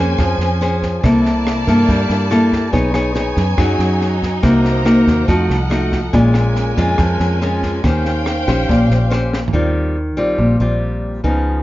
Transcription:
0.00 0.16 F2 loud
0.00 0.15 A#3 medium
0.00 0.57 C#4 medium
0.00 1.01 C#4 medium
0.00 0.57 G#4 medium
0.00 0.57 C5 medium
0.00 1.01 C5 medium
0.00 1.01 G#5 medium
0.18 0.38 F2 medium
0.18 1.01 F3 medium
0.18 kick medium
0.18 cross-stick medium
0.18 snare soft
0.38 0.98 F2 medium
0.38 snare soft
0.61 1.00 C#4 medium
0.61 1.00 G#4 medium
0.61 1.00 C5 medium
0.61 snare soft
0.82 kick soft
0.82 snare soft
1.02 1.63 C2 medium
1.02 1.86 C3 medium
1.02 2.72 A#3 medium
1.02 1.63 A#3 medium
1.02 2.71 E4 medium
1.02 1.64 E4 medium
1.02 1.64 A4 medium
1.02 2.71 D5 medium
1.02 2.71 A5 medium
1.02 kick medium
1.02 cross-stick medium
1.02 snare soft
1.25 snare soft
1.47 cross-stick medium
1.47 snare soft
1.67 1.87 G2 loud
1.67 2.27 A#3 medium
1.67 2.28 E4 medium
1.67 2.28 A4 medium
1.67 kick soft
1.67 snare soft
1.88 2.08 G2 medium
1.88 2.71 G3 medium
1.88 kick medium
1.88 snare soft
2.10 2.69 G2 medium
2.10 snare soft
2.30 2.70 A#3 medium
2.30 2.70 E4 medium
2.30 2.70 A4 medium
2.30 cross-stick medium
2.30 snare soft
2.52 kick soft
2.52 snare soft
2.72 3.33 B1 medium
2.72 3.56 B3 medium
2.72 6.10 D#4 medium
2.72 2.91 D#4 medium
2.72 2.91 G#4 medium
2.72 4.41 C#5 medium
2.72 2.91 C#5 medium
2.72 4.41 G#5 medium
2.72 kick medium
2.72 snare soft
2.94 3.12 D#4 medium
2.94 3.12 G#4 medium
2.94 3.12 C#5 medium
2.94 cross-stick medium
2.94 snare soft
3.15 3.42 D#4 medium
3.15 3.43 G#4 medium
3.15 3.43 C#5 medium
3.15 snare soft
3.37 3.57 F#2 loud
3.37 kick soft
3.37 snare soft
3.57 3.78 F#2 medium
3.57 4.41 F#3 medium
3.57 4.15 D#4 medium
3.57 4.15 G#4 medium
3.57 4.15 C#5 medium
3.57 kick medium
3.57 cross-stick medium
3.57 snare soft
3.79 4.39 F#2 medium
3.79 snare soft
4.01 snare soft
4.22 kick soft
4.22 snare soft
4.43 5.03 C2 loud
4.43 5.26 C3 medium
4.43 4.82 A#3 medium
4.43 4.82 D#4 medium
4.43 4.82 F#4 medium
4.43 5.27 C5 medium
4.43 5.28 A#5 medium
4.43 kick medium
4.43 cross-stick medium
4.43 snare soft
4.65 snare soft
4.85 5.26 A#3 medium
4.85 5.26 D#4 medium
4.85 5.27 F#4 medium
4.85 cross-stick medium
4.85 snare soft
5.07 5.27 D#2 loud
5.07 kick soft
5.07 snare soft
5.28 5.48 F2 loud
5.28 6.11 F3 medium
5.28 5.55 A3 medium
5.28 5.56 D#4 medium
5.28 5.56 F#4 medium
5.28 6.12 A4 medium
5.28 6.12 F#5 medium
5.28 kick medium
5.28 snare soft
5.49 6.09 C2 medium
5.49 snare soft
5.70 5.99 A3 medium
5.70 5.99 D#4 medium
5.70 5.99 F#4 medium
5.70 cross-stick medium
5.70 snare soft
5.92 kick soft
5.92 snare soft
6.13 6.73 A#1 loud
6.13 6.96 A#2 medium
6.13 6.74 G#3 medium
6.13 9.50 C#4 medium
6.13 6.74 C#4 medium
6.13 6.74 F4 medium
6.13 7.82 A#4 medium
6.13 7.82 G#5 medium
6.13 kick medium
6.13 snare soft
6.34 cross-stick medium
6.34 snare soft
6.56 snare soft
6.77 6.97 F2 loud
6.77 7.38 G#3 medium
6.77 7.38 C#4 medium
6.77 7.38 F4 medium
6.77 kick soft
6.77 snare soft
6.98 7.18 F2 medium
6.98 7.82 F3 medium
6.98 kick medium
6.98 cross-stick medium
6.98 snare soft
7.20 7.80 F2 loud
7.20 snare soft
7.41 7.80 G#3 medium
7.41 7.80 C#4 medium
7.41 7.81 F4 medium
7.41 snare soft
7.63 kick soft
7.63 snare soft
7.84 8.44 D#2 loud
7.84 8.67 D#3 medium
7.84 8.26 C#4 medium
7.84 8.26 G4 medium
7.84 9.53 C5 medium
7.84 8.27 C5 medium
7.84 9.53 F5 medium
7.84 9.53 G5 medium
7.84 kick medium
7.84 cross-stick medium
7.84 snare soft
8.05 snare soft
8.26 cross-stick medium
8.26 snare soft
8.47 8.67 A#1 loud
8.47 9.08 C#4 medium
8.47 9.08 G4 medium
8.47 9.08 C5 medium
8.47 kick soft
8.47 snare soft
8.69 8.89 A#1 medium
8.69 9.52 A#2 medium
8.69 kick medium
8.69 snare soft
8.90 9.50 A#1 medium
8.90 snare soft
9.11 9.38 C#4 medium
9.11 9.39 G4 medium
9.11 9.39 C5 medium
9.11 cross-stick medium
9.11 snare soft
9.33 snare soft
9.48 floor tom medium
9.53 10.17 D#2 medium
9.53 10.36 D#3 medium
9.53 9.96 G3 medium
9.53 9.96 C4 medium
9.53 9.96 F4 medium
10.17 10.37 A#1 medium
10.17 10.56 G3 medium
10.17 10.57 C4 medium
10.17 10.57 F4 medium
10.38 10.59 A#1 medium
10.38 11.22 A#2 medium
10.60 11.20 A#1 medium
10.60 11.21 G3 medium
10.60 11.21 C4 medium
10.60 11.21 F4 medium
11.24 11.63 C#2 medium
11.24 11.63 C#3 medium
11.24 11.63 F3 medium
11.24 11.63 B3 medium
11.24 11.63 D#4 medium

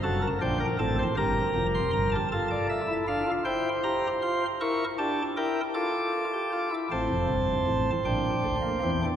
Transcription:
0.03 0.27 F#1 medium
0.03 0.27 F#2 medium
0.03 0.27 F#4 medium
0.03 0.19 A4 medium
0.03 0.27 A5 medium
0.22 0.39 A#4 medium
0.41 0.65 A#1 medium
0.41 0.65 A#2 medium
0.41 0.65 D4 medium
0.41 0.58 C5 medium
0.41 0.65 G5 medium
0.60 0.77 A#4 medium
0.79 1.03 A1 medium
0.79 1.03 A2 medium
0.79 1.03 C4 medium
0.79 0.96 A4 medium
0.79 1.03 A5 medium
0.99 1.15 C5 medium
1.17 1.41 G1 medium
1.17 1.40 G2 medium
1.17 2.15 G4 medium
1.17 2.15 A#4 medium
1.17 1.66 A#5 medium
1.55 1.79 F1 medium
1.55 1.79 F2 medium
1.75 1.91 C6 medium
1.93 2.17 G1 medium
1.93 2.16 G2 medium
1.93 2.09 A#5 medium
2.12 2.28 A5 medium
2.32 2.81 F4 medium
2.32 3.30 A4 medium
2.32 2.48 A5 medium
2.51 2.67 D5 medium
2.69 2.93 E5 medium
2.88 3.04 E4 medium
3.07 3.24 D4 medium
3.07 3.31 F5 medium
3.27 3.43 F4 medium
3.45 3.69 E4 medium
3.45 4.43 C5 medium
3.45 3.69 G5 medium
3.83 4.07 G4 medium
3.83 4.07 A#5 medium
4.22 4.46 F4 medium
4.22 4.46 C6 medium
4.61 4.84 E4 medium
4.61 4.84 A#4 medium
4.61 4.84 C#6 medium
4.98 5.22 D4 medium
4.98 5.22 G4 medium
4.98 5.22 A5 medium
5.37 5.61 E4 medium
5.37 5.61 A#4 medium
5.37 5.61 G5 medium
5.74 6.24 F4 medium
5.74 6.74 A4 medium
5.74 6.74 D6 medium
6.33 6.50 G4 medium
6.53 6.69 F4 medium
6.71 6.88 E4 medium
6.91 7.08 A1 medium
6.91 7.08 A2 medium
6.91 7.90 C4 medium
6.91 8.90 C5 medium
6.91 7.90 A5 medium
7.09 7.26 F1 medium
7.09 7.26 F2 medium
7.29 7.53 G1 medium
7.29 7.53 G2 medium
7.67 7.91 A1 medium
7.67 7.91 A2 medium
8.05 8.29 A#1 medium
8.05 8.29 A#2 medium
8.05 8.55 D4 medium
8.05 9.05 G5 medium
8.44 8.68 D2 medium
8.44 8.68 D3 medium
8.62 8.79 A#3 medium
8.83 9.07 E2 medium
8.83 9.07 E3 medium
8.83 9.00 C4 medium
9.03 9.16 D4 medium

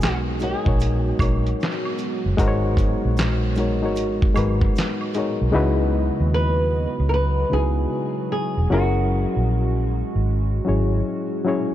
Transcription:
0.00 0.54 B1 medium
0.00 5.50 F#3 medium
0.00 0.24 G#3 loud
0.00 5.50 G#3 medium
0.00 5.50 B3 medium
0.00 0.24 D#4 loud
0.00 0.25 F#4 loud
0.00 5.50 F#4 medium
0.00 0.14 F#4 loud
0.00 0.25 A#4 loud
0.00 0.26 B4 loud
0.00 snare loud
0.00 clap medium
0.00 closed hi-hat medium
0.00 maracas medium
0.39 0.61 G#3 medium
0.39 0.62 D#4 medium
0.39 0.62 F#4 medium
0.39 4.72 G#4 medium
0.39 0.63 A#4 medium
0.39 0.63 C#5 medium
0.39 closed hi-hat medium
0.39 maracas soft
0.64 1.11 A#1 medium
0.64 1.11 G#3 medium
0.64 1.11 D#4 medium
0.64 1.12 F#4 medium
0.64 1.12 A#4 medium
0.64 1.13 C#5 medium
0.64 kick medium
0.80 closed hi-hat medium
0.80 maracas medium
1.19 1.52 A#1 medium
1.19 2.22 G#3 medium
1.19 2.22 D#4 medium
1.19 2.23 F#4 medium
1.19 2.23 A#4 medium
1.19 2.24 C#5 medium
1.19 kick medium
1.19 closed hi-hat medium
1.19 high woodblock medium
1.19 maracas soft
1.46 closed hi-hat soft
1.60 snare loud
1.60 clap medium
1.60 closed hi-hat medium
1.60 maracas medium
1.85 high woodblock soft
1.98 closed hi-hat medium
1.98 maracas soft
2.26 2.36 F#1 medium
2.37 2.93 G#1 loud
2.37 3.40 G#3 loud
2.37 3.41 D#4 loud
2.37 3.41 F#4 loud
2.37 3.42 A#4 loud
2.37 2.48 C5 loud
2.37 kick medium
2.37 closed hi-hat medium
2.37 maracas medium
2.48 3.45 C#5 loud
2.77 kick medium
2.77 closed hi-hat medium
2.77 maracas soft
3.05 3.84 A#1 medium
3.17 snare loud
3.17 clap medium
3.17 closed hi-hat medium
3.17 maracas medium
3.55 3.78 G#3 medium
3.55 3.78 D#4 medium
3.55 3.78 F#4 medium
3.55 3.79 A#4 medium
3.55 closed hi-hat medium
3.55 maracas soft
3.60 3.79 C#5 medium
3.82 4.27 G#1 medium
3.82 4.28 G#3 medium
3.82 4.28 D#4 medium
3.82 4.29 F#4 medium
3.82 4.29 A#4 medium
3.82 4.30 C#5 medium
3.96 closed hi-hat medium
3.96 maracas medium
4.22 kick medium
4.34 4.69 G#1 medium
4.34 5.04 G#3 medium
4.34 5.04 D#4 medium
4.34 5.05 F#4 medium
4.34 5.05 A#4 medium
4.34 5.06 B4 loud
4.34 closed hi-hat medium
4.34 high woodblock medium
4.34 maracas soft
4.61 kick medium
4.76 snare medium
4.76 clap medium
4.76 closed hi-hat medium
4.76 maracas medium
5.01 high woodblock soft
5.14 5.49 G#3 medium
5.14 5.50 D#4 medium
5.14 5.50 F#4 medium
5.14 5.51 A#4 medium
5.14 closed hi-hat medium
5.14 maracas soft
5.18 5.51 C#5 medium
5.42 5.52 B1 medium
5.52 6.09 C#2 loud
5.52 6.85 C#3 loud
5.52 11.74 F#3 medium
5.52 6.86 G#3 loud
5.52 8.67 B3 medium
5.52 6.86 D#4 loud
5.52 6.86 E4 loud
5.52 11.74 F#4 medium
5.52 6.87 F#4 loud
5.52 6.87 B4 loud
5.52 8.67 D#5 medium
6.20 6.86 D#2 medium
6.34 7.04 B4 loud
7.00 7.43 C#2 medium
7.09 7.13 A#4 medium
7.14 7.53 B4 loud
7.50 7.85 C#2 loud
7.50 8.53 C#3 medium
7.50 8.53 G#3 medium
7.50 8.54 D#4 medium
7.50 8.54 E4 medium
7.50 8.54 F#4 medium
7.50 8.31 G#4 medium
7.50 8.55 B4 medium
8.32 8.72 G#4 medium
8.57 8.68 E1 medium
8.70 9.25 F#1 loud
8.70 10.02 F#3 loud
8.70 11.74 G#3 medium
8.70 11.74 C#4 medium
8.70 10.03 C#4 loud
8.70 10.03 E4 medium
8.70 9.46 F#4 medium
8.70 10.04 G#4 loud
8.70 10.04 A#4 loud
9.37 10.02 A#1 medium
10.16 10.59 G#1 medium
10.65 11.01 G#1 loud
10.65 11.35 F#3 medium
10.65 11.35 C#4 medium
10.65 11.36 E4 medium
10.65 11.36 G#4 medium
10.65 11.37 C#5 medium
11.44 11.74 F#3 medium
11.44 11.74 C#4 medium
11.44 11.74 E4 medium
11.44 11.74 G#4 medium
11.44 11.74 C#5 medium

